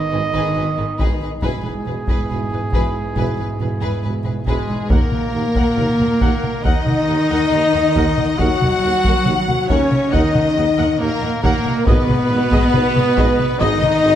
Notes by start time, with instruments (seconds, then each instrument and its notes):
Already playing: cello section D#3, french horn section B3 D#4, trumpet D#5
0.12 double bass section G#1, tuba G#1, viola section D#4, violin section G#4 B4
0.33 double bass section G#1, viola section D#4, violin section G#4 B4
0.55 tuba G#1, double bass section G#1, viola section D#4, violin section G#4 B4
0.77 double bass section G#1, viola section D#4, violin section G#4 B4
0.98 tuba G#1, double bass section G#1, viola section D#4, violin section G#4 B4, taiko
1.20 double bass section G#1, viola section D#4, violin section G#4 B4
1.42 tuba E1, double bass section E1, cello section G#2, french horn section B3 E4, viola section E4, trumpet G#4, violin section G#4 B4, taiko
1.64 double bass section E1, viola section E4, violin section G#4 B4
1.86 tuba E1, double bass section E1, viola section E4, violin section G#4 B4
2.08 double bass section E1, viola section E4, violin section G#4 B4, taiko
2.29 tuba E1, double bass section E1, viola section E4, violin section G#4 B4
2.51 double bass section E1, viola section E4, violin section G#4 B4
2.73 tuba E1, double bass section E1, viola section E4, violin section G#4 B4, taiko
3.15 tuba E1, double bass section E1, viola section E4, violin section G#4 B4, taiko
3.37 double bass section E1, viola section E4, violin section G#4 B4
3.60 tuba E1, double bass section E1, viola section E4, violin section G#4 B4
3.80 double bass section E1, viola section E4, violin section G#4 B4
4.02 tuba E1, double bass section E1, viola section E4, violin section G#4 B4
4.24 double bass section E1, viola section E4, violin section G#4 B4
4.46 tuba E1, double bass section E1, cello section G#2, trumpet G#3, french horn section G#3, viola section E4, violin section G#4 B4, flute section G#4, taiko
4.69 double bass section E1, viola section E4, violin section G#4 B4
4.90 tuba D#2, double bass section D#2, cello section A#2, trumpet A#3, french horn section A#3, violin section A#4, flute section A#4, viola section A#4 F#5, taiko
5.12 double bass section D#2, viola section A#4 F#5, taiko mid
5.34 double bass section D#2, tuba D#2, viola section A#4 F#5
5.55 double bass section D#2, viola section A#4 F#5, taiko
5.77 double bass section D#2, tuba D#2, viola section A#4 F#5, taiko mid
5.99 double bass section D#2, viola section A#4 F#5, taiko mid
6.21 tuba D#2, double bass section D#2, viola section A#4 F#5, taiko
6.44 taiko mid
6.64 double bass section D#2, tuba D#2, cello section D#3, trumpet D#4, french horn section D#4, viola section A#4 F#5, flute section D#5, violin section D#5, taiko
6.86 double bass section D#2, viola section A#4 F#5, taiko mid
7.08 tuba D#2, double bass section D#2, viola section A#4 F#5
7.30 double bass section D#2, viola section A#4 F#5
7.51 tuba D#2, double bass section D#2, viola section A#4 F#5
7.74 double bass section D#2, viola section A#4 F#5
7.95 tuba D#2, double bass section D#2, viola section A#4 F#5, taiko
8.18 double bass section D#2, viola section A#4 F#5, taiko mid
8.38 tuba D#2, double bass section D#2, cello section F#3, french horn section F#4, trumpet F#4, viola section A#4 F#5, violin section F#5, flute section F#5, taiko
8.61 double bass section D#2, viola section A#4 F#5, taiko mid
8.82 tuba D#2, double bass section D#2, viola section A#4 F#5
9.05 double bass section D#2, viola section A#4 F#5, taiko
9.26 tuba D#2, double bass section D#2, viola section A#4 F#5, taiko mid
9.48 double bass section D#2, viola section A#4 F#5, taiko mid
9.68 tuba D#2, double bass section D#2, cello section C#3, french horn section C#4, trumpet C#4, viola section A#4 F#5, violin section C#5, flute section C#5, taiko
9.92 taiko mid
10.12 tuba D#2, double bass section D#2, cello section D#3, french horn section D#4, trumpet D#4, viola section A#4 F#5, violin section D#5, flute section D#5, taiko
10.35 double bass section D#2, viola section A#4 F#5, taiko mid
10.56 tuba D#2, double bass section D#2, viola section A#4 F#5
10.78 double bass section D#2, viola section A#4 F#5
10.99 double bass section D#2, tuba D#2, cello section A#2, trumpet A#3, french horn section A#3, violin section A#4, viola section A#4 F#5, flute section A#4
11.22 double bass section D#2, viola section A#4 F#5
11.42 double bass section D#2, tuba D#2, cello section A#2, trumpet A#3, french horn section A#3, violin section A#4, viola section A#4 F#5, flute section A#4, taiko
11.65 double bass section D#2, viola section A#4 F#5, taiko mid
11.85 double bass section G#1, tuba G#1, cello section B2, french horn section B3, trumpet B3, viola section G#4 D#5, violin section B4, flute section B4, taiko
12.08 double bass section G#1, viola section G#4 D#5, taiko mid
12.29 tuba G#1, double bass section G#1, viola section G#4 D#5
12.52 double bass section G#1, viola section G#4 D#5, taiko
12.73 double bass section G#1, tuba G#1, viola section G#4 D#5, taiko mid
12.95 double bass section G#1, viola section G#4 D#5, taiko mid
13.17 tuba G#1, double bass section G#1, viola section G#4 D#5, taiko
13.39 taiko mid
13.60 tuba G#1, double bass section G#1, cello section D#3, trumpet D#4, french horn section D#4, viola section G#4 D#5, flute section D#5, violin section D#5, taiko
13.82 double bass section G#1, viola section G#4 D#5, taiko mid
14.04 tuba G#1, double bass section G#1, viola section G#4 D#5